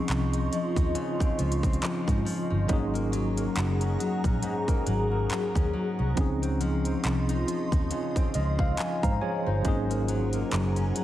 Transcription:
0.00 2.64 F3 medium
0.00 1.19 C4 medium
0.00 2.65 C4 medium
0.00 2.66 C#4 medium
0.00 2.66 D#4 medium
0.00 2.66 F4 medium
0.00 2.67 G#4 medium
0.00 2.66 D#5 medium
0.00 2.66 C6 medium
0.00 9.61 C#6 medium
0.08 0.47 C2 medium
0.08 0.50 F3 medium
0.08 clap loud
0.08 closed hi-hat medium
0.33 0.76 D#4 medium
0.33 closed hi-hat medium
0.52 1.37 F3 medium
0.52 closed hi-hat medium
0.76 0.93 D#2 medium
0.76 2.07 D#4 medium
0.76 kick medium
0.76 closed hi-hat medium
0.95 2.79 C#3 medium
0.95 closed hi-hat medium
1.20 1.62 C4 medium
1.20 muted fingered electric bass stroke soft
1.20 kick medium
1.20 closed hi-hat soft
1.38 1.77 C#2 loud
1.38 1.81 F3 medium
1.38 closed hi-hat medium
1.52 closed hi-hat medium
1.63 2.79 C4 medium
1.63 kick medium
1.63 closed hi-hat soft
1.73 closed hi-hat soft
1.82 2.24 F3 medium
1.82 muted fingered electric bass stroke soft
1.82 clap loud
1.82 closed hi-hat medium
2.07 2.24 G#2 medium
2.07 2.50 D#4 medium
2.07 kick medium
2.07 closed hi-hat soft
2.25 2.79 F3 medium
2.25 open hi-hat medium
2.50 2.67 G1 medium
2.50 3.81 D#4 medium
2.67 3.46 G#1 loud
2.67 4.41 G#2 medium
2.67 6.12 F#3 medium
2.67 6.12 A#3 medium
2.67 6.13 C#4 medium
2.67 6.14 G#4 medium
2.67 6.13 F#5 medium
2.67 6.13 A#5 medium
2.67 kick loud
2.67 closed hi-hat medium
2.71 6.14 D#4 medium
2.71 6.15 G#4 medium
2.94 3.36 A#3 medium
2.94 closed hi-hat medium
3.12 3.55 F#3 medium
3.12 closed hi-hat medium
3.37 4.67 A#3 medium
3.37 closed hi-hat medium
3.56 3.95 F#1 loud
3.56 3.98 F#3 medium
3.56 clap loud
3.56 closed hi-hat medium
3.81 4.24 C#4 medium
3.81 closed hi-hat medium
3.99 4.85 F#3 medium
3.99 closed hi-hat medium
4.24 4.41 A#1 medium
4.24 5.54 C#4 medium
4.24 kick medium
4.24 closed hi-hat soft
4.43 6.27 G#2 medium
4.43 closed hi-hat medium
4.68 5.10 A#3 medium
4.68 muted fingered electric bass stroke soft
4.68 kick medium
4.68 closed hi-hat soft
4.86 5.25 G#1 medium
4.86 5.29 F#3 medium
4.86 closed hi-hat medium
5.11 6.27 A#3 medium
5.30 5.72 F#3 medium
5.30 clap loud
5.30 closed hi-hat medium
5.55 5.72 D#2 medium
5.55 5.98 C#4 medium
5.55 kick medium
5.55 closed hi-hat soft
5.73 6.27 F#3 medium
5.99 6.15 C2 medium
5.99 6.45 C#4 medium
6.15 9.60 F3 medium
6.15 9.60 C4 medium
6.15 9.61 C#4 medium
6.15 9.61 F4 medium
6.15 9.62 D#5 medium
6.15 9.62 C6 medium
6.15 kick loud
6.15 closed hi-hat medium
6.19 9.62 D#4 medium
6.19 8.76 G#4 medium
6.42 6.85 C4 medium
6.42 closed hi-hat medium
6.60 7.03 F3 medium
6.60 closed hi-hat medium
6.85 8.15 C4 medium
6.85 closed hi-hat medium
7.04 7.43 C2 medium
7.04 7.46 F3 medium
7.04 clap loud
7.04 closed hi-hat medium
7.29 7.72 D#4 medium
7.29 closed hi-hat medium
7.48 8.33 F3 medium
7.48 closed hi-hat medium
7.72 7.89 D#2 medium
7.72 9.03 D#4 medium
7.72 kick medium
7.72 closed hi-hat medium
7.91 9.75 C#3 medium
7.91 closed hi-hat medium
8.16 8.59 C4 medium
8.16 muted fingered electric bass stroke soft
8.16 kick medium
8.16 closed hi-hat soft
8.34 8.73 C#2 medium
8.34 8.77 F3 medium
8.34 8.58 D#5 medium
8.34 closed hi-hat medium
8.59 9.75 C4 medium
8.59 8.77 F5 medium
8.59 kick medium
8.77 9.20 F3 medium
8.77 9.01 G#5 medium
8.77 muted fingered electric bass stroke soft
8.77 clap loud
8.77 closed hi-hat medium
9.03 9.19 G#2 loud
9.03 9.46 D#4 medium
9.03 9.21 C5 medium
9.03 9.21 F5 medium
9.03 9.20 A#5 medium
9.03 kick medium
9.03 closed hi-hat soft
9.21 9.75 F3 medium
9.21 9.46 G#4 medium
9.21 9.45 C#5 medium
9.21 9.62 G#5 medium
9.46 9.63 G1 medium
9.46 10.76 D#4 medium
9.46 9.88 F4 medium
9.46 9.88 C5 medium
9.62 10.42 G#1 loud
9.62 11.04 G#2 medium
9.62 11.04 F#3 medium
9.62 11.04 A#3 medium
9.62 9.72 C4 medium
9.62 11.04 G#4 medium
9.62 11.04 F#5 medium
9.62 11.04 G#5 medium
9.62 11.04 A#5 medium
9.62 kick loud
9.62 closed hi-hat medium
9.66 11.04 D#4 medium
9.66 11.04 G#4 medium
9.71 11.04 C#4 medium
9.90 10.33 A#3 medium
9.90 closed hi-hat medium
10.08 10.51 F#3 medium
10.08 closed hi-hat medium
10.33 11.04 A#3 medium
10.33 closed hi-hat medium
10.51 10.91 F#1 loud
10.51 10.94 F#3 medium
10.51 clap loud
10.51 closed hi-hat medium
10.76 11.04 C#4 medium
10.76 closed hi-hat soft
10.95 11.04 F#3 medium
10.95 closed hi-hat medium

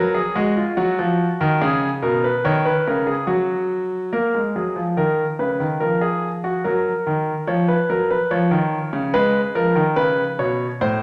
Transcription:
0.00 0.20 F#3 loud
0.00 0.14 A#4 medium
0.14 0.35 G#4 medium
0.35 0.61 G#3 loud
0.35 0.56 F#4 medium
0.57 0.77 F4 medium
0.77 0.97 F#3 loud
0.77 1.58 F#4 medium
0.99 1.24 F3 medium
1.41 1.61 D#3 loud
1.62 1.87 C#3 loud
1.62 1.87 G#4 medium
2.02 2.28 B2 medium
2.02 2.23 A#4 medium
2.24 2.44 B4 medium
2.44 2.70 D#3 loud
2.44 2.65 C#5 medium
2.65 2.85 B4 medium
2.87 3.13 C#3 medium
2.87 3.07 A#4 medium
3.07 3.27 G#4 medium
3.27 4.10 F#3 medium
3.27 4.10 F#4 medium
4.13 4.33 A#3 medium
4.13 4.39 A#4 medium
4.35 4.55 G#3 medium
4.56 4.76 F#3 medium
4.56 4.82 G#4 medium
4.76 4.97 F3 medium
4.97 5.23 D#3 medium
4.97 5.23 A#4 medium
5.39 5.60 C#3 medium
5.39 5.65 B4 medium
5.60 5.81 D#3 medium
5.80 6.63 F3 medium
5.80 6.01 A#4 medium
6.01 6.28 G#4 medium
6.44 6.65 F#4 medium
6.64 6.91 F#3 medium
6.64 7.45 A#4 medium
7.07 7.32 D#3 medium
7.47 7.73 F3 medium
7.47 7.68 C#5 medium
7.68 7.89 B4 medium
7.90 8.15 F#3 medium
7.90 8.10 A#4 medium
8.11 8.31 B4 medium
8.31 8.51 F3 medium
8.31 9.11 C#5 medium
8.51 8.77 D#3 medium
8.93 9.13 C#3 medium
9.14 9.40 G#3 medium
9.14 9.39 B4 loud
9.55 9.75 F3 medium
9.55 9.81 A#4 medium
9.75 9.96 D#3 medium
9.96 10.23 C#3 medium
9.96 10.23 B4 medium
10.39 10.65 B2 medium
10.39 10.66 C#5 medium
10.81 11.03 A2 medium
10.81 11.02 C5 loud

